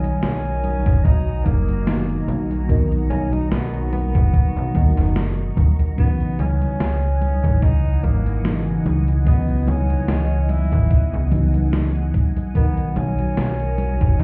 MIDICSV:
0, 0, Header, 1, 6, 480
1, 0, Start_track
1, 0, Tempo, 821918
1, 1572, Time_signature, 4, 2, 24, 8
1, 8315, End_track
2, 0, Start_track
2, 0, Title_t, "String machine"
2, 0, Program_c, 0, 50
2, 0, Note_on_c, 0, 66, 86
2, 0, Note_on_c, 0, 75, 78
2, 0, Note_on_c, 0, 80, 92
2, 0, Note_on_c, 0, 82, 77
2, 1549, Note_off_c, 0, 80, 0
2, 1570, Note_on_c, 0, 85, 96
2, 3467, Note_off_c, 0, 66, 0
2, 3468, Note_off_c, 0, 82, 0
2, 3469, Note_off_c, 0, 75, 0
2, 3472, Note_off_c, 0, 85, 0
2, 3489, Note_on_c, 0, 52, 85
2, 3489, Note_on_c, 0, 78, 76
2, 3490, Note_on_c, 0, 75, 77
2, 3490, Note_on_c, 0, 80, 92
2, 7307, Note_off_c, 0, 52, 0
2, 7307, Note_off_c, 0, 75, 0
2, 7307, Note_off_c, 0, 78, 0
2, 7330, Note_on_c, 0, 75, 77
2, 7331, Note_on_c, 0, 66, 86
2, 7332, Note_on_c, 0, 82, 76
2, 8315, Note_off_c, 0, 66, 0
2, 8315, Note_off_c, 0, 75, 0
2, 8315, Note_off_c, 0, 80, 0
2, 8315, Note_off_c, 0, 82, 0
2, 8315, End_track
3, 0, Start_track
3, 0, Title_t, "Tenor saxophone"
3, 0, Program_c, 1, 66
3, 0, Note_on_c, 1, 61, 111
3, 610, Note_on_c, 1, 63, 115
3, 619, Note_off_c, 1, 61, 0
3, 848, Note_on_c, 1, 58, 98
3, 857, Note_off_c, 1, 63, 0
3, 1330, Note_off_c, 1, 58, 0
3, 1811, Note_on_c, 1, 61, 103
3, 1943, Note_on_c, 1, 63, 101
3, 1952, Note_off_c, 1, 61, 0
3, 2047, Note_off_c, 1, 63, 0
3, 2050, Note_on_c, 1, 59, 97
3, 2274, Note_off_c, 1, 59, 0
3, 2294, Note_on_c, 1, 59, 101
3, 3230, Note_off_c, 1, 59, 0
3, 3499, Note_on_c, 1, 59, 94
3, 3719, Note_off_c, 1, 59, 0
3, 3736, Note_on_c, 1, 61, 108
3, 4454, Note_on_c, 1, 63, 117
3, 4463, Note_off_c, 1, 61, 0
3, 4695, Note_on_c, 1, 58, 94
3, 4704, Note_off_c, 1, 63, 0
3, 5173, Note_off_c, 1, 58, 0
3, 5417, Note_on_c, 1, 59, 91
3, 5655, Note_on_c, 1, 61, 105
3, 5664, Note_off_c, 1, 59, 0
3, 6134, Note_on_c, 1, 64, 111
3, 6143, Note_off_c, 1, 61, 0
3, 6613, Note_off_c, 1, 64, 0
3, 7336, Note_on_c, 1, 59, 98
3, 7573, Note_on_c, 1, 61, 110
3, 7582, Note_off_c, 1, 59, 0
3, 8292, Note_on_c, 1, 63, 115
3, 8300, Note_off_c, 1, 61, 0
3, 8315, Note_off_c, 1, 63, 0
3, 8315, End_track
4, 0, Start_track
4, 0, Title_t, "FM electric piano"
4, 0, Program_c, 2, 5
4, 0, Control_c, 2, 64, 127
4, 0, Note_on_c, 2, 47, 79
4, 0, Note_on_c, 2, 51, 72
4, 0, Note_on_c, 2, 54, 71
4, 0, Note_on_c, 2, 63, 88
4, 0, Note_on_c, 2, 70, 71
4, 1062, Note_off_c, 2, 47, 0
4, 1063, Note_off_c, 2, 51, 0
4, 1066, Note_off_c, 2, 54, 0
4, 1068, Note_off_c, 2, 70, 0
4, 1071, Note_off_c, 2, 63, 0
4, 1087, Note_on_c, 2, 47, 82
4, 1090, Note_on_c, 2, 51, 75
4, 1091, Note_on_c, 2, 54, 76
4, 1094, Note_on_c, 2, 58, 74
4, 1097, Note_on_c, 2, 63, 90
4, 1544, Note_off_c, 2, 47, 0
4, 1545, Note_off_c, 2, 51, 0
4, 1545, Note_off_c, 2, 54, 0
4, 1547, Note_off_c, 2, 58, 0
4, 1548, Note_off_c, 2, 63, 0
4, 1563, Note_on_c, 2, 47, 98
4, 1568, Note_on_c, 2, 51, 86
4, 1573, Note_on_c, 2, 54, 89
4, 1577, Note_on_c, 2, 70, 86
4, 1582, Note_on_c, 2, 63, 106
4, 2741, Note_off_c, 2, 47, 0
4, 2744, Note_off_c, 2, 51, 0
4, 2746, Note_off_c, 2, 54, 0
4, 2748, Note_off_c, 2, 70, 0
4, 2751, Note_off_c, 2, 63, 0
4, 2765, Note_on_c, 2, 47, 79
4, 2770, Note_on_c, 2, 51, 74
4, 2775, Note_on_c, 2, 54, 73
4, 2780, Note_on_c, 2, 70, 74
4, 2782, Note_on_c, 2, 63, 90
4, 3462, Note_off_c, 2, 47, 0
4, 3465, Note_off_c, 2, 51, 0
4, 3467, Note_off_c, 2, 54, 0
4, 3470, Note_off_c, 2, 70, 0
4, 3471, Note_off_c, 2, 63, 0
4, 3483, Note_on_c, 2, 49, 76
4, 3488, Note_on_c, 2, 52, 71
4, 3492, Note_on_c, 2, 54, 71
4, 3496, Note_on_c, 2, 47, 72
4, 3500, Control_c, 2, 64, 0
4, 3501, Note_on_c, 2, 63, 85
4, 3599, Control_c, 2, 64, 127
4, 4901, Note_off_c, 2, 49, 0
4, 4904, Note_off_c, 2, 52, 0
4, 4906, Note_off_c, 2, 54, 0
4, 4908, Note_off_c, 2, 47, 0
4, 4910, Note_off_c, 2, 63, 0
4, 4928, Note_on_c, 2, 49, 82
4, 4930, Note_on_c, 2, 52, 75
4, 4932, Note_on_c, 2, 54, 74
4, 4935, Note_on_c, 2, 47, 74
4, 4937, Note_on_c, 2, 63, 88
4, 5384, Note_off_c, 2, 49, 0
4, 5385, Note_off_c, 2, 52, 0
4, 5386, Note_off_c, 2, 54, 0
4, 5387, Note_off_c, 2, 47, 0
4, 5388, Note_off_c, 2, 63, 0
4, 5401, Note_on_c, 2, 49, 95
4, 5404, Note_on_c, 2, 52, 88
4, 5408, Note_on_c, 2, 54, 90
4, 5412, Note_on_c, 2, 59, 88
4, 5417, Note_on_c, 2, 75, 107
4, 6580, Note_off_c, 2, 49, 0
4, 6582, Note_off_c, 2, 52, 0
4, 6584, Note_off_c, 2, 54, 0
4, 6586, Note_off_c, 2, 59, 0
4, 6588, Note_off_c, 2, 75, 0
4, 6601, Note_on_c, 2, 49, 83
4, 6605, Note_on_c, 2, 52, 77
4, 6610, Note_on_c, 2, 54, 75
4, 6614, Note_on_c, 2, 59, 76
4, 6619, Note_on_c, 2, 63, 91
4, 7300, Note_off_c, 2, 49, 0
4, 7302, Note_off_c, 2, 52, 0
4, 7305, Note_off_c, 2, 54, 0
4, 7307, Note_off_c, 2, 59, 0
4, 7309, Note_off_c, 2, 63, 0
4, 7321, Note_on_c, 2, 47, 77
4, 7325, Note_on_c, 2, 51, 71
4, 7329, Note_on_c, 2, 54, 70
4, 7333, Note_on_c, 2, 70, 72
4, 7337, Note_on_c, 2, 63, 87
4, 7340, Control_c, 2, 64, 0
4, 7437, Control_c, 2, 64, 127
4, 8315, Note_off_c, 2, 47, 0
4, 8315, Note_off_c, 2, 51, 0
4, 8315, Note_off_c, 2, 54, 0
4, 8315, Note_off_c, 2, 63, 0
4, 8315, Note_off_c, 2, 70, 0
4, 8315, End_track
5, 0, Start_track
5, 0, Title_t, "FM bass"
5, 0, Program_c, 3, 39
5, 133, Note_on_c, 3, 35, 94
5, 464, Note_off_c, 3, 35, 0
5, 503, Note_on_c, 3, 30, 94
5, 592, Note_off_c, 3, 30, 0
5, 612, Note_on_c, 3, 35, 95
5, 811, Note_off_c, 3, 35, 0
5, 852, Note_on_c, 3, 30, 88
5, 1299, Note_off_c, 3, 30, 0
5, 1332, Note_on_c, 3, 35, 98
5, 1779, Note_off_c, 3, 35, 0
5, 1814, Note_on_c, 3, 35, 99
5, 1920, Note_off_c, 3, 35, 0
5, 1946, Note_on_c, 3, 35, 42
5, 2031, Note_off_c, 3, 35, 0
5, 2055, Note_on_c, 3, 35, 95
5, 2385, Note_off_c, 3, 35, 0
5, 2424, Note_on_c, 3, 30, 99
5, 2512, Note_off_c, 3, 30, 0
5, 2666, Note_on_c, 3, 35, 101
5, 2769, Note_off_c, 3, 35, 0
5, 2773, Note_on_c, 3, 39, 92
5, 2879, Note_off_c, 3, 39, 0
5, 2906, Note_on_c, 3, 30, 97
5, 3221, Note_off_c, 3, 30, 0
5, 3253, Note_on_c, 3, 39, 80
5, 3359, Note_off_c, 3, 39, 0
5, 3734, Note_on_c, 3, 37, 98
5, 3840, Note_off_c, 3, 37, 0
5, 3974, Note_on_c, 3, 37, 92
5, 4305, Note_off_c, 3, 37, 0
5, 4344, Note_on_c, 3, 32, 98
5, 4432, Note_off_c, 3, 32, 0
5, 4453, Note_on_c, 3, 37, 97
5, 4652, Note_off_c, 3, 37, 0
5, 4692, Note_on_c, 3, 32, 87
5, 5139, Note_off_c, 3, 32, 0
5, 5173, Note_on_c, 3, 37, 96
5, 5620, Note_off_c, 3, 37, 0
5, 5651, Note_on_c, 3, 37, 97
5, 5758, Note_off_c, 3, 37, 0
5, 5784, Note_on_c, 3, 37, 42
5, 5870, Note_off_c, 3, 37, 0
5, 5892, Note_on_c, 3, 37, 94
5, 6224, Note_off_c, 3, 37, 0
5, 6263, Note_on_c, 3, 32, 99
5, 6351, Note_off_c, 3, 32, 0
5, 6503, Note_on_c, 3, 37, 99
5, 7059, Note_off_c, 3, 37, 0
5, 7570, Note_on_c, 3, 35, 99
5, 7677, Note_off_c, 3, 35, 0
5, 7810, Note_on_c, 3, 35, 96
5, 8143, Note_off_c, 3, 35, 0
5, 8182, Note_on_c, 3, 30, 95
5, 8271, Note_off_c, 3, 30, 0
5, 8292, Note_on_c, 3, 35, 96
5, 8315, Note_off_c, 3, 35, 0
5, 8315, End_track
6, 0, Start_track
6, 0, Title_t, "Drums"
6, 24, Note_on_c, 9, 42, 55
6, 24, Note_on_c, 9, 63, 37
6, 82, Note_off_c, 9, 42, 0
6, 82, Note_off_c, 9, 63, 0
6, 132, Note_on_c, 9, 38, 127
6, 132, Note_on_c, 9, 42, 82
6, 132, Note_on_c, 9, 63, 27
6, 191, Note_off_c, 9, 38, 0
6, 191, Note_off_c, 9, 42, 0
6, 191, Note_off_c, 9, 63, 0
6, 265, Note_on_c, 9, 42, 38
6, 323, Note_off_c, 9, 42, 0
6, 372, Note_on_c, 9, 42, 84
6, 372, Note_on_c, 9, 63, 62
6, 431, Note_off_c, 9, 42, 0
6, 431, Note_off_c, 9, 63, 0
6, 503, Note_on_c, 9, 36, 107
6, 503, Note_on_c, 9, 42, 56
6, 503, Note_on_c, 9, 63, 37
6, 561, Note_off_c, 9, 36, 0
6, 561, Note_off_c, 9, 42, 0
6, 561, Note_off_c, 9, 63, 0
6, 612, Note_on_c, 9, 36, 126
6, 612, Note_on_c, 9, 42, 81
6, 612, Note_on_c, 9, 63, 27
6, 670, Note_off_c, 9, 36, 0
6, 671, Note_off_c, 9, 42, 0
6, 671, Note_off_c, 9, 63, 0
6, 852, Note_on_c, 9, 36, 65
6, 852, Note_on_c, 9, 42, 82
6, 852, Note_on_c, 9, 63, 65
6, 910, Note_off_c, 9, 36, 0
6, 911, Note_off_c, 9, 42, 0
6, 911, Note_off_c, 9, 63, 0
6, 984, Note_on_c, 9, 42, 56
6, 984, Note_on_c, 9, 63, 36
6, 1042, Note_off_c, 9, 42, 0
6, 1042, Note_off_c, 9, 63, 0
6, 1093, Note_on_c, 9, 38, 126
6, 1093, Note_on_c, 9, 42, 81
6, 1151, Note_off_c, 9, 38, 0
6, 1151, Note_off_c, 9, 42, 0
6, 1224, Note_on_c, 9, 42, 38
6, 1282, Note_off_c, 9, 42, 0
6, 1334, Note_on_c, 9, 42, 79
6, 1334, Note_on_c, 9, 63, 62
6, 1392, Note_off_c, 9, 42, 0
6, 1392, Note_off_c, 9, 63, 0
6, 1465, Note_on_c, 9, 42, 53
6, 1465, Note_on_c, 9, 63, 35
6, 1524, Note_off_c, 9, 42, 0
6, 1524, Note_off_c, 9, 63, 0
6, 1572, Note_on_c, 9, 36, 124
6, 1573, Note_on_c, 9, 42, 79
6, 1573, Note_on_c, 9, 63, 27
6, 1631, Note_off_c, 9, 36, 0
6, 1632, Note_off_c, 9, 42, 0
6, 1632, Note_off_c, 9, 63, 0
6, 1705, Note_on_c, 9, 42, 37
6, 1763, Note_off_c, 9, 42, 0
6, 1813, Note_on_c, 9, 42, 79
6, 1813, Note_on_c, 9, 63, 61
6, 1872, Note_off_c, 9, 42, 0
6, 1872, Note_off_c, 9, 63, 0
6, 1945, Note_on_c, 9, 42, 53
6, 1945, Note_on_c, 9, 63, 35
6, 2003, Note_off_c, 9, 42, 0
6, 2003, Note_off_c, 9, 63, 0
6, 2054, Note_on_c, 9, 38, 124
6, 2054, Note_on_c, 9, 42, 81
6, 2054, Note_on_c, 9, 63, 28
6, 2112, Note_off_c, 9, 38, 0
6, 2112, Note_off_c, 9, 42, 0
6, 2112, Note_off_c, 9, 63, 0
6, 2184, Note_on_c, 9, 42, 36
6, 2242, Note_off_c, 9, 42, 0
6, 2293, Note_on_c, 9, 42, 79
6, 2293, Note_on_c, 9, 63, 63
6, 2352, Note_off_c, 9, 42, 0
6, 2352, Note_off_c, 9, 63, 0
6, 2424, Note_on_c, 9, 36, 106
6, 2426, Note_on_c, 9, 42, 53
6, 2426, Note_on_c, 9, 63, 37
6, 2483, Note_off_c, 9, 36, 0
6, 2484, Note_off_c, 9, 42, 0
6, 2484, Note_off_c, 9, 63, 0
6, 2533, Note_on_c, 9, 36, 123
6, 2534, Note_on_c, 9, 42, 80
6, 2534, Note_on_c, 9, 63, 26
6, 2591, Note_off_c, 9, 36, 0
6, 2592, Note_off_c, 9, 42, 0
6, 2592, Note_off_c, 9, 63, 0
6, 2773, Note_on_c, 9, 36, 64
6, 2773, Note_on_c, 9, 42, 79
6, 2773, Note_on_c, 9, 63, 61
6, 2831, Note_off_c, 9, 36, 0
6, 2832, Note_off_c, 9, 42, 0
6, 2832, Note_off_c, 9, 63, 0
6, 2904, Note_on_c, 9, 38, 38
6, 2904, Note_on_c, 9, 42, 52
6, 2904, Note_on_c, 9, 63, 35
6, 2963, Note_off_c, 9, 38, 0
6, 2963, Note_off_c, 9, 42, 0
6, 2963, Note_off_c, 9, 63, 0
6, 3013, Note_on_c, 9, 38, 123
6, 3013, Note_on_c, 9, 42, 78
6, 3013, Note_on_c, 9, 63, 27
6, 3072, Note_off_c, 9, 38, 0
6, 3072, Note_off_c, 9, 42, 0
6, 3072, Note_off_c, 9, 63, 0
6, 3144, Note_on_c, 9, 42, 37
6, 3203, Note_off_c, 9, 42, 0
6, 3253, Note_on_c, 9, 36, 108
6, 3253, Note_on_c, 9, 42, 77
6, 3253, Note_on_c, 9, 63, 60
6, 3311, Note_off_c, 9, 42, 0
6, 3311, Note_off_c, 9, 63, 0
6, 3312, Note_off_c, 9, 36, 0
6, 3383, Note_on_c, 9, 42, 52
6, 3383, Note_on_c, 9, 63, 35
6, 3442, Note_off_c, 9, 42, 0
6, 3442, Note_off_c, 9, 63, 0
6, 3492, Note_on_c, 9, 42, 77
6, 3492, Note_on_c, 9, 63, 27
6, 3493, Note_on_c, 9, 36, 122
6, 3551, Note_off_c, 9, 42, 0
6, 3551, Note_off_c, 9, 63, 0
6, 3552, Note_off_c, 9, 36, 0
6, 3623, Note_on_c, 9, 42, 36
6, 3682, Note_off_c, 9, 42, 0
6, 3732, Note_on_c, 9, 42, 77
6, 3732, Note_on_c, 9, 63, 62
6, 3790, Note_off_c, 9, 42, 0
6, 3790, Note_off_c, 9, 63, 0
6, 3863, Note_on_c, 9, 42, 50
6, 3863, Note_on_c, 9, 63, 37
6, 3922, Note_off_c, 9, 42, 0
6, 3922, Note_off_c, 9, 63, 0
6, 3973, Note_on_c, 9, 38, 120
6, 3973, Note_on_c, 9, 42, 77
6, 4032, Note_off_c, 9, 38, 0
6, 4032, Note_off_c, 9, 42, 0
6, 4105, Note_on_c, 9, 42, 34
6, 4163, Note_off_c, 9, 42, 0
6, 4214, Note_on_c, 9, 42, 76
6, 4214, Note_on_c, 9, 63, 62
6, 4272, Note_off_c, 9, 42, 0
6, 4272, Note_off_c, 9, 63, 0
6, 4344, Note_on_c, 9, 36, 106
6, 4346, Note_on_c, 9, 42, 52
6, 4346, Note_on_c, 9, 63, 37
6, 4402, Note_off_c, 9, 36, 0
6, 4405, Note_off_c, 9, 42, 0
6, 4405, Note_off_c, 9, 63, 0
6, 4452, Note_on_c, 9, 36, 121
6, 4454, Note_on_c, 9, 42, 79
6, 4454, Note_on_c, 9, 63, 28
6, 4511, Note_off_c, 9, 36, 0
6, 4512, Note_off_c, 9, 42, 0
6, 4512, Note_off_c, 9, 63, 0
6, 4692, Note_on_c, 9, 36, 61
6, 4694, Note_on_c, 9, 42, 77
6, 4694, Note_on_c, 9, 63, 63
6, 4751, Note_off_c, 9, 36, 0
6, 4753, Note_off_c, 9, 42, 0
6, 4753, Note_off_c, 9, 63, 0
6, 4825, Note_on_c, 9, 42, 51
6, 4825, Note_on_c, 9, 63, 35
6, 4883, Note_off_c, 9, 42, 0
6, 4883, Note_off_c, 9, 63, 0
6, 4934, Note_on_c, 9, 38, 121
6, 4934, Note_on_c, 9, 42, 78
6, 4934, Note_on_c, 9, 63, 27
6, 4992, Note_off_c, 9, 38, 0
6, 4992, Note_off_c, 9, 42, 0
6, 4992, Note_off_c, 9, 63, 0
6, 5063, Note_on_c, 9, 42, 35
6, 5122, Note_off_c, 9, 42, 0
6, 5173, Note_on_c, 9, 42, 76
6, 5173, Note_on_c, 9, 63, 62
6, 5231, Note_off_c, 9, 42, 0
6, 5231, Note_off_c, 9, 63, 0
6, 5303, Note_on_c, 9, 42, 51
6, 5303, Note_on_c, 9, 63, 34
6, 5361, Note_off_c, 9, 42, 0
6, 5361, Note_off_c, 9, 63, 0
6, 5412, Note_on_c, 9, 36, 116
6, 5412, Note_on_c, 9, 42, 78
6, 5412, Note_on_c, 9, 63, 28
6, 5470, Note_off_c, 9, 36, 0
6, 5470, Note_off_c, 9, 42, 0
6, 5470, Note_off_c, 9, 63, 0
6, 5542, Note_on_c, 9, 42, 36
6, 5600, Note_off_c, 9, 42, 0
6, 5651, Note_on_c, 9, 42, 75
6, 5651, Note_on_c, 9, 63, 62
6, 5709, Note_off_c, 9, 42, 0
6, 5709, Note_off_c, 9, 63, 0
6, 5782, Note_on_c, 9, 42, 52
6, 5782, Note_on_c, 9, 63, 38
6, 5840, Note_off_c, 9, 42, 0
6, 5840, Note_off_c, 9, 63, 0
6, 5889, Note_on_c, 9, 38, 119
6, 5889, Note_on_c, 9, 42, 77
6, 5889, Note_on_c, 9, 63, 28
6, 5947, Note_off_c, 9, 38, 0
6, 5947, Note_off_c, 9, 42, 0
6, 5947, Note_off_c, 9, 63, 0
6, 6021, Note_on_c, 9, 42, 35
6, 6079, Note_off_c, 9, 42, 0
6, 6128, Note_on_c, 9, 42, 75
6, 6128, Note_on_c, 9, 63, 64
6, 6186, Note_off_c, 9, 42, 0
6, 6186, Note_off_c, 9, 63, 0
6, 6260, Note_on_c, 9, 42, 51
6, 6260, Note_on_c, 9, 63, 38
6, 6262, Note_on_c, 9, 36, 99
6, 6319, Note_off_c, 9, 42, 0
6, 6319, Note_off_c, 9, 63, 0
6, 6321, Note_off_c, 9, 36, 0
6, 6370, Note_on_c, 9, 42, 75
6, 6370, Note_on_c, 9, 63, 28
6, 6371, Note_on_c, 9, 36, 117
6, 6428, Note_off_c, 9, 42, 0
6, 6428, Note_off_c, 9, 63, 0
6, 6430, Note_off_c, 9, 36, 0
6, 6608, Note_on_c, 9, 42, 78
6, 6608, Note_on_c, 9, 63, 66
6, 6611, Note_on_c, 9, 36, 60
6, 6667, Note_off_c, 9, 42, 0
6, 6667, Note_off_c, 9, 63, 0
6, 6670, Note_off_c, 9, 36, 0
6, 6740, Note_on_c, 9, 42, 50
6, 6740, Note_on_c, 9, 63, 36
6, 6799, Note_off_c, 9, 42, 0
6, 6799, Note_off_c, 9, 63, 0
6, 6851, Note_on_c, 9, 38, 118
6, 6851, Note_on_c, 9, 42, 75
6, 6851, Note_on_c, 9, 63, 28
6, 6909, Note_off_c, 9, 38, 0
6, 6909, Note_off_c, 9, 42, 0
6, 6909, Note_off_c, 9, 63, 0
6, 6982, Note_on_c, 9, 42, 36
6, 7040, Note_off_c, 9, 42, 0
6, 7090, Note_on_c, 9, 42, 78
6, 7090, Note_on_c, 9, 63, 64
6, 7091, Note_on_c, 9, 36, 104
6, 7148, Note_off_c, 9, 42, 0
6, 7148, Note_off_c, 9, 63, 0
6, 7149, Note_off_c, 9, 36, 0
6, 7222, Note_on_c, 9, 42, 51
6, 7222, Note_on_c, 9, 63, 36
6, 7280, Note_off_c, 9, 42, 0
6, 7280, Note_off_c, 9, 63, 0
6, 7330, Note_on_c, 9, 42, 80
6, 7330, Note_on_c, 9, 63, 30
6, 7331, Note_on_c, 9, 36, 113
6, 7388, Note_off_c, 9, 42, 0
6, 7388, Note_off_c, 9, 63, 0
6, 7389, Note_off_c, 9, 36, 0
6, 7460, Note_on_c, 9, 42, 37
6, 7519, Note_off_c, 9, 42, 0
6, 7569, Note_on_c, 9, 42, 78
6, 7569, Note_on_c, 9, 63, 66
6, 7627, Note_off_c, 9, 42, 0
6, 7627, Note_off_c, 9, 63, 0
6, 7701, Note_on_c, 9, 42, 53
6, 7701, Note_on_c, 9, 63, 39
6, 7759, Note_off_c, 9, 42, 0
6, 7759, Note_off_c, 9, 63, 0
6, 7809, Note_on_c, 9, 38, 116
6, 7809, Note_on_c, 9, 42, 81
6, 7809, Note_on_c, 9, 63, 29
6, 7868, Note_off_c, 9, 38, 0
6, 7868, Note_off_c, 9, 42, 0
6, 7868, Note_off_c, 9, 63, 0
6, 7941, Note_on_c, 9, 42, 36
6, 7999, Note_off_c, 9, 42, 0
6, 8048, Note_on_c, 9, 42, 80
6, 8048, Note_on_c, 9, 63, 68
6, 8106, Note_off_c, 9, 42, 0
6, 8106, Note_off_c, 9, 63, 0
6, 8181, Note_on_c, 9, 42, 53
6, 8181, Note_on_c, 9, 63, 39
6, 8182, Note_on_c, 9, 36, 100
6, 8239, Note_off_c, 9, 42, 0
6, 8239, Note_off_c, 9, 63, 0
6, 8241, Note_off_c, 9, 36, 0
6, 8290, Note_on_c, 9, 42, 80
6, 8290, Note_on_c, 9, 63, 29
6, 8291, Note_on_c, 9, 36, 118
6, 8315, Note_off_c, 9, 36, 0
6, 8315, Note_off_c, 9, 42, 0
6, 8315, Note_off_c, 9, 63, 0
6, 8315, End_track
0, 0, End_of_file